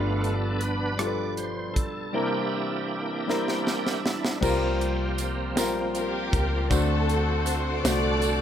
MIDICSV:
0, 0, Header, 1, 7, 480
1, 0, Start_track
1, 0, Tempo, 760456
1, 1352, Time_signature, 6, 3, 24, 8
1, 5312, End_track
2, 0, Start_track
2, 0, Title_t, "String section"
2, 0, Program_c, 0, 48
2, 3762, Note_on_c, 0, 70, 79
2, 3765, Note_on_c, 0, 65, 60
2, 3765, Note_on_c, 0, 67, 66
2, 4211, Note_off_c, 0, 70, 0
2, 4213, Note_off_c, 0, 65, 0
2, 4213, Note_off_c, 0, 67, 0
2, 4239, Note_on_c, 0, 69, 92
2, 4243, Note_on_c, 0, 66, 63
2, 4244, Note_on_c, 0, 60, 64
2, 4714, Note_off_c, 0, 69, 0
2, 4720, Note_on_c, 0, 72, 84
2, 4930, Note_off_c, 0, 66, 0
2, 4931, Note_off_c, 0, 60, 0
2, 4955, Note_off_c, 0, 72, 0
2, 4955, Note_on_c, 0, 69, 72
2, 4956, Note_on_c, 0, 74, 92
2, 4957, Note_on_c, 0, 66, 78
2, 5312, Note_off_c, 0, 66, 0
2, 5312, Note_off_c, 0, 69, 0
2, 5312, Note_off_c, 0, 74, 0
2, 5312, End_track
3, 0, Start_track
3, 0, Title_t, "Grand piano"
3, 0, Program_c, 1, 0
3, 0, Note_on_c, 1, 43, 46
3, 0, Note_on_c, 1, 55, 63
3, 0, Note_on_c, 1, 62, 58
3, 0, Note_on_c, 1, 65, 55
3, 0, Note_on_c, 1, 71, 69
3, 20, Control_c, 1, 64, 127
3, 464, Note_off_c, 1, 55, 0
3, 467, Note_off_c, 1, 62, 0
3, 468, Note_off_c, 1, 65, 0
3, 492, Note_off_c, 1, 71, 0
3, 603, Note_off_c, 1, 43, 0
3, 623, Note_on_c, 1, 55, 55
3, 625, Note_on_c, 1, 62, 49
3, 629, Note_on_c, 1, 65, 51
3, 635, Note_on_c, 1, 69, 49
3, 674, Note_off_c, 1, 69, 0
3, 674, Note_on_c, 1, 71, 62
3, 1187, Note_off_c, 1, 55, 0
3, 1189, Note_off_c, 1, 62, 0
3, 1191, Note_off_c, 1, 65, 0
3, 1213, Note_off_c, 1, 71, 0
3, 1342, Note_on_c, 1, 55, 61
3, 1348, Note_on_c, 1, 60, 53
3, 1350, Note_on_c, 1, 48, 46
3, 1351, Note_on_c, 1, 64, 57
3, 1357, Note_on_c, 1, 70, 66
3, 1361, Control_c, 1, 64, 0
3, 1485, Control_c, 1, 64, 127
3, 1908, Note_off_c, 1, 55, 0
3, 1910, Note_off_c, 1, 60, 0
3, 1912, Note_off_c, 1, 64, 0
3, 1915, Note_off_c, 1, 70, 0
3, 2047, Note_off_c, 1, 48, 0
3, 2066, Note_on_c, 1, 55, 65
3, 2072, Note_on_c, 1, 60, 60
3, 2076, Note_on_c, 1, 64, 57
3, 2080, Note_on_c, 1, 70, 74
3, 2629, Note_off_c, 1, 55, 0
3, 2632, Note_off_c, 1, 60, 0
3, 2634, Note_off_c, 1, 64, 0
3, 2636, Note_off_c, 1, 70, 0
3, 2782, Note_on_c, 1, 55, 88
3, 2787, Note_on_c, 1, 60, 74
3, 2790, Note_on_c, 1, 48, 66
3, 2793, Note_on_c, 1, 65, 76
3, 2795, Note_on_c, 1, 70, 94
3, 2801, Control_c, 1, 64, 0
3, 2918, Control_c, 1, 64, 127
3, 3347, Note_off_c, 1, 55, 0
3, 3350, Note_off_c, 1, 60, 0
3, 3352, Note_off_c, 1, 65, 0
3, 3353, Note_off_c, 1, 70, 0
3, 3486, Note_off_c, 1, 48, 0
3, 3505, Note_on_c, 1, 55, 72
3, 3512, Note_on_c, 1, 60, 70
3, 3515, Note_on_c, 1, 65, 69
3, 3519, Note_on_c, 1, 70, 86
3, 4068, Note_off_c, 1, 55, 0
3, 4071, Note_off_c, 1, 60, 0
3, 4073, Note_off_c, 1, 65, 0
3, 4075, Note_off_c, 1, 70, 0
3, 4227, Note_on_c, 1, 57, 70
3, 4229, Note_on_c, 1, 62, 68
3, 4232, Note_on_c, 1, 50, 59
3, 4235, Note_on_c, 1, 66, 64
3, 4239, Control_c, 1, 64, 0
3, 4239, Note_on_c, 1, 72, 78
3, 4357, Control_c, 1, 64, 127
3, 4788, Note_off_c, 1, 57, 0
3, 4789, Note_off_c, 1, 62, 0
3, 4792, Note_off_c, 1, 66, 0
3, 4794, Note_off_c, 1, 72, 0
3, 4925, Note_off_c, 1, 50, 0
3, 4947, Note_on_c, 1, 57, 70
3, 4949, Note_on_c, 1, 62, 65
3, 4952, Note_on_c, 1, 66, 61
3, 4959, Note_on_c, 1, 72, 74
3, 5312, Note_off_c, 1, 57, 0
3, 5312, Note_off_c, 1, 62, 0
3, 5312, Note_off_c, 1, 66, 0
3, 5312, Note_off_c, 1, 72, 0
3, 5312, End_track
4, 0, Start_track
4, 0, Title_t, "Tonewheel organ"
4, 0, Program_c, 2, 16
4, 0, Note_on_c, 2, 57, 44
4, 0, Note_on_c, 2, 59, 57
4, 0, Note_on_c, 2, 62, 55
4, 0, Note_on_c, 2, 65, 72
4, 133, Note_on_c, 2, 69, 73
4, 217, Note_off_c, 2, 57, 0
4, 223, Note_off_c, 2, 65, 0
4, 370, Note_on_c, 2, 71, 72
4, 389, Note_off_c, 2, 69, 0
4, 596, Note_off_c, 2, 59, 0
4, 597, Note_off_c, 2, 62, 0
4, 615, Note_on_c, 2, 74, 80
4, 628, Note_off_c, 2, 71, 0
4, 846, Note_off_c, 2, 74, 0
4, 866, Note_on_c, 2, 72, 75
4, 1096, Note_on_c, 2, 69, 70
4, 1116, Note_off_c, 2, 72, 0
4, 1345, Note_on_c, 2, 58, 49
4, 1350, Note_on_c, 2, 62, 43
4, 1350, Note_on_c, 2, 64, 51
4, 1352, Note_off_c, 2, 69, 0
4, 1353, Note_on_c, 2, 67, 69
4, 2528, Note_off_c, 2, 67, 0
4, 2529, Note_off_c, 2, 58, 0
4, 2767, Note_off_c, 2, 62, 0
4, 2768, Note_off_c, 2, 64, 0
4, 2794, Note_on_c, 2, 67, 80
4, 2797, Note_on_c, 2, 58, 60
4, 2799, Note_on_c, 2, 52, 54
4, 2799, Note_on_c, 2, 60, 67
4, 2836, Note_on_c, 2, 53, 73
4, 2837, Note_off_c, 2, 52, 0
4, 4207, Note_off_c, 2, 67, 0
4, 4208, Note_off_c, 2, 58, 0
4, 4209, Note_off_c, 2, 60, 0
4, 4228, Note_off_c, 2, 53, 0
4, 4229, Note_on_c, 2, 50, 60
4, 4229, Note_on_c, 2, 60, 62
4, 4229, Note_on_c, 2, 65, 57
4, 4230, Note_on_c, 2, 57, 56
4, 4269, Note_on_c, 2, 66, 69
4, 4272, Note_off_c, 2, 65, 0
4, 5312, Note_off_c, 2, 50, 0
4, 5312, Note_off_c, 2, 57, 0
4, 5312, Note_off_c, 2, 60, 0
4, 5312, Note_off_c, 2, 66, 0
4, 5312, End_track
5, 0, Start_track
5, 0, Title_t, "French horn section"
5, 0, Program_c, 3, 60
5, 0, Note_on_c, 3, 47, 61
5, 0, Note_on_c, 3, 53, 61
5, 0, Note_on_c, 3, 55, 58
5, 0, Note_on_c, 3, 62, 69
5, 1320, Note_off_c, 3, 53, 0
5, 1336, Note_off_c, 3, 62, 0
5, 1338, Note_off_c, 3, 47, 0
5, 1356, Note_on_c, 3, 58, 61
5, 1358, Note_on_c, 3, 60, 69
5, 1363, Note_on_c, 3, 52, 61
5, 2765, Note_off_c, 3, 55, 0
5, 2781, Note_off_c, 3, 58, 0
5, 2782, Note_off_c, 3, 60, 0
5, 2784, Note_off_c, 3, 52, 0
5, 5312, End_track
6, 0, Start_track
6, 0, Title_t, "Fingered electric bass"
6, 0, Program_c, 4, 33
6, 0, Note_on_c, 4, 31, 88
6, 1113, Note_off_c, 4, 31, 0
6, 1113, Note_on_c, 4, 35, 68
6, 1333, Note_off_c, 4, 35, 0
6, 2793, Note_on_c, 4, 36, 105
6, 3512, Note_off_c, 4, 36, 0
6, 3512, Note_on_c, 4, 34, 86
6, 3966, Note_off_c, 4, 34, 0
6, 3996, Note_on_c, 4, 37, 82
6, 4215, Note_off_c, 4, 37, 0
6, 4231, Note_on_c, 4, 38, 102
6, 4924, Note_off_c, 4, 38, 0
6, 4951, Note_on_c, 4, 36, 85
6, 5312, Note_off_c, 4, 36, 0
6, 5312, End_track
7, 0, Start_track
7, 0, Title_t, "Drums"
7, 152, Note_on_c, 9, 42, 37
7, 215, Note_off_c, 9, 42, 0
7, 383, Note_on_c, 9, 42, 50
7, 446, Note_off_c, 9, 42, 0
7, 625, Note_on_c, 9, 37, 91
7, 626, Note_on_c, 9, 42, 76
7, 688, Note_off_c, 9, 37, 0
7, 690, Note_off_c, 9, 42, 0
7, 867, Note_on_c, 9, 42, 41
7, 930, Note_off_c, 9, 42, 0
7, 1113, Note_on_c, 9, 36, 76
7, 1113, Note_on_c, 9, 42, 56
7, 1176, Note_off_c, 9, 36, 0
7, 1176, Note_off_c, 9, 42, 0
7, 2080, Note_on_c, 9, 38, 45
7, 2143, Note_off_c, 9, 38, 0
7, 2198, Note_on_c, 9, 38, 48
7, 2262, Note_off_c, 9, 38, 0
7, 2316, Note_on_c, 9, 38, 59
7, 2379, Note_off_c, 9, 38, 0
7, 2440, Note_on_c, 9, 38, 61
7, 2503, Note_off_c, 9, 38, 0
7, 2560, Note_on_c, 9, 38, 76
7, 2623, Note_off_c, 9, 38, 0
7, 2680, Note_on_c, 9, 38, 69
7, 2743, Note_off_c, 9, 38, 0
7, 2793, Note_on_c, 9, 36, 92
7, 2795, Note_on_c, 9, 49, 76
7, 2796, Note_on_c, 9, 54, 57
7, 2857, Note_off_c, 9, 36, 0
7, 2858, Note_off_c, 9, 49, 0
7, 2860, Note_off_c, 9, 54, 0
7, 3038, Note_on_c, 9, 42, 43
7, 3101, Note_off_c, 9, 42, 0
7, 3270, Note_on_c, 9, 54, 61
7, 3272, Note_on_c, 9, 42, 62
7, 3333, Note_off_c, 9, 54, 0
7, 3336, Note_off_c, 9, 42, 0
7, 3516, Note_on_c, 9, 38, 105
7, 3517, Note_on_c, 9, 42, 85
7, 3517, Note_on_c, 9, 54, 107
7, 3579, Note_off_c, 9, 38, 0
7, 3580, Note_off_c, 9, 42, 0
7, 3580, Note_off_c, 9, 54, 0
7, 3754, Note_on_c, 9, 42, 51
7, 3760, Note_on_c, 9, 54, 50
7, 3817, Note_off_c, 9, 42, 0
7, 3823, Note_off_c, 9, 54, 0
7, 3996, Note_on_c, 9, 36, 93
7, 3998, Note_on_c, 9, 42, 70
7, 4059, Note_off_c, 9, 36, 0
7, 4061, Note_off_c, 9, 42, 0
7, 4234, Note_on_c, 9, 36, 100
7, 4236, Note_on_c, 9, 42, 77
7, 4242, Note_on_c, 9, 54, 63
7, 4297, Note_off_c, 9, 36, 0
7, 4299, Note_off_c, 9, 42, 0
7, 4305, Note_off_c, 9, 54, 0
7, 4478, Note_on_c, 9, 42, 44
7, 4541, Note_off_c, 9, 42, 0
7, 4708, Note_on_c, 9, 54, 64
7, 4715, Note_on_c, 9, 42, 61
7, 4771, Note_off_c, 9, 54, 0
7, 4778, Note_off_c, 9, 42, 0
7, 4955, Note_on_c, 9, 38, 113
7, 4956, Note_on_c, 9, 42, 96
7, 4958, Note_on_c, 9, 54, 110
7, 5018, Note_off_c, 9, 38, 0
7, 5019, Note_off_c, 9, 42, 0
7, 5021, Note_off_c, 9, 54, 0
7, 5187, Note_on_c, 9, 42, 46
7, 5196, Note_on_c, 9, 54, 53
7, 5250, Note_off_c, 9, 42, 0
7, 5260, Note_off_c, 9, 54, 0
7, 5312, End_track
0, 0, End_of_file